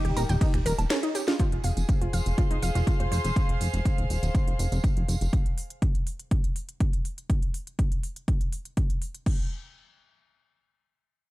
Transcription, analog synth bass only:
0.05 D#1
0.17 D#1
0.29 D#1
0.54 D#1
0.66 D#1
0.79 D#1
1.52 F1
1.64 F1
1.77 F1
2.02 F1
2.13 F1
2.26 F1
2.51 F1
2.63 F1
2.75 F1
3.00 F1
3.12 F1
3.24 F1
3.49 F1
3.61 F1
3.74 F1
3.98 D#1
4.10 D#1
4.23 D#1
4.47 F1
4.59 F1
4.72 F1
4.97 F1
5.08 F1
5.21 F1

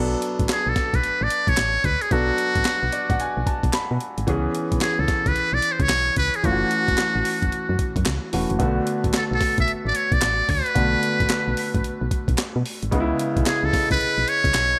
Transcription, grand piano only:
Already playing: F#3 B3 D4 A4
2.11 F#3 B3 D4 A4
2.93 D5
3.10 F#5
3.20 G#5
3.47 A5
3.74 B5
4.27 E3 B3 C#4 G#4
6.43 E3 A3 C#4 F4
6.52 F#4
8.33 E3 A3 C#4 F#4
8.59 D3 A3 B3 F#4
10.75 D3 A3 B3 F#4
12.91 C#3 G#3 B3 D#4
13.00 E4

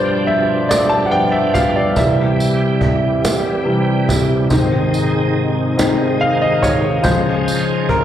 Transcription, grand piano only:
Already playing: G2 F3 B3 C5 D5
0.27 E5
0.69 D5
0.89 A5
1.06 F#5
1.11 G2 F3 B3 G5
1.32 E5
1.54 F5
1.76 D5
1.97 C3 E3 G3 E5
3.65 C3 E3 G3
4.49 G#2 D#3 C4
5.77 G#2 D#3 C4
6.21 F5
6.42 D#5
6.62 C#5
7.02 C#3 F3 G#3 C5
7.89 A#4

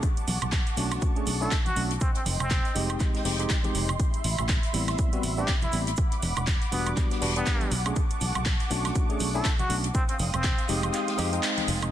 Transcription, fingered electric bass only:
0.28 B1
0.42 B1
0.77 B1
1.27 B1
1.76 B1
2.26 F1
2.40 F1
2.76 F1
3.25 F1
3.75 F1
4.24 A1
4.39 A1
4.74 A1
5.24 A1
5.73 A1
6.23 E1
6.37 E1
6.72 E1
7.22 E1
7.71 B1
8.21 B1
8.35 B1
8.71 B1
9.20 B1
9.70 B1
10.19 F1
10.34 F1
10.69 F1
11.19 F2
11.68 F1

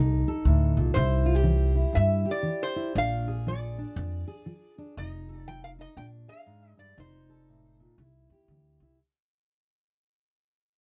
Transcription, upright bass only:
Already playing: C2
0.45 D2
0.77 C2
0.96 C2
1.96 G2
2.95 A#1
3.96 F2
4.97 F1
5.97 A#1
6.98 F1
7.98 C2
8.30 E2
8.48 D2
8.80 C2

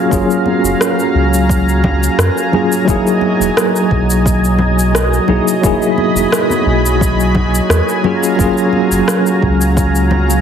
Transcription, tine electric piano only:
Already playing: F#3 A#3 C#4 F4 G#4
0.10 F#3 A#3 C#4 F4
0.14 G#4
2.52 F#3 A#3 C#4 F4 G#4
2.85 F#3 A#3 D#4
2.89 E4 G#4
5.27 F#3 A#3 D#4 E4 G#4
5.61 F#3 A#3 D#4 E4
5.66 G#4
8.04 F#3 A#3 C#4 F4 G#4
8.36 F#3 A#3 C#4 F4
8.41 G#4

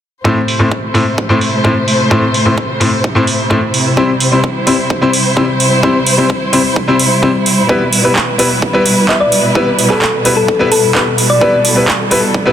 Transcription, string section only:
0.25 C3 A3 E4 C5
3.97 G3 C5
7.69 B2 B4
11.41 A4

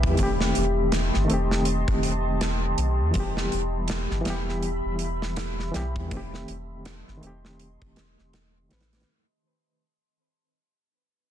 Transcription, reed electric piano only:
Already playing: E3 G3 B3 G4
0.15 D#3 A3
0.20 C4 G4
1.25 D#3 A3
1.31 C4 G4
3.11 E3 G3
3.16 B3 G4
4.21 E3 G3
4.27 B3 G4
5.72 E3 G3 B3
5.76 G4
6.08 D#3 A3
6.14 C4 G4
7.18 D#3 A3
7.24 C4 G4
8.69 D#3 A3 C4
8.73 B4

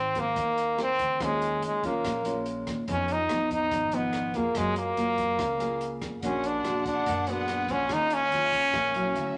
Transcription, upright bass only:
Already playing: G#1
0.36 D#2
0.99 D2
1.21 D#2
1.63 D#2
2.05 A#1
2.67 D#2
2.88 F2
3.31 F2
3.72 G#1
4.34 F2
4.55 F#2
4.97 F#2
5.39 C#2
6.02 F#2
6.23 A#1
6.65 A#1
7.06 F#2
7.69 A#1
7.90 D#2
8.33 D#2
8.74 A#1
9.16 D2

